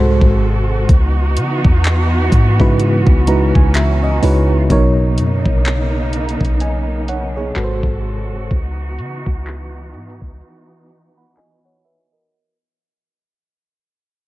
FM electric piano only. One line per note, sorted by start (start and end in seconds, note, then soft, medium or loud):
0.00 0.73 G#2 medium
0.00 0.73 G#3 medium
0.00 0.73 F#4 medium
0.00 0.73 A4 medium
0.00 0.74 C5 loud
2.59 3.08 C#3 medium
2.59 3.08 G#3 medium
2.59 3.09 D#4 medium
2.59 3.09 E4 medium
2.59 3.09 F#4 medium
2.59 3.09 B4 loud
3.27 3.95 C#3 medium
3.27 3.96 G#3 medium
3.27 3.96 D#4 medium
3.27 3.96 E4 medium
3.27 3.96 F#4 medium
3.27 3.96 B4 medium
3.27 3.53 A#5 medium
3.55 3.74 G#5 medium
3.75 4.01 E5 medium
4.03 4.21 D#5 medium
4.22 4.57 C#3 medium
4.22 4.58 G#3 medium
4.22 4.58 D#4 medium
4.22 4.58 E4 medium
4.22 4.58 F#4 medium
4.22 4.58 B4 loud
4.22 4.67 C#5 medium
4.70 6.03 B2 loud
4.70 6.03 F#3 medium
4.70 6.03 D#4 medium
4.70 6.04 A#4 medium
4.70 6.04 C#5 loud
6.61 7.06 D#5 soft
6.61 7.06 G#5 medium
7.09 7.35 C#5 medium
7.09 7.34 F#5 medium
7.36 7.81 G#4 medium
7.36 7.81 C#5 medium
7.55 8.35 G#2 medium
7.55 8.35 G#3 medium
7.55 8.35 F#4 medium
7.55 8.35 A4 medium
7.55 7.64 B4 medium
7.64 8.39 C5 medium
11.17 11.36 F#5 medium
11.17 11.36 B5 medium
11.37 11.63 D#5 medium
11.37 11.63 G#5 medium
11.65 11.84 C#5 medium
11.65 11.83 F#5 medium
11.85 12.11 B4 medium
11.85 12.11 E5 medium
12.12 12.58 A#4 medium
12.12 12.57 D#5 medium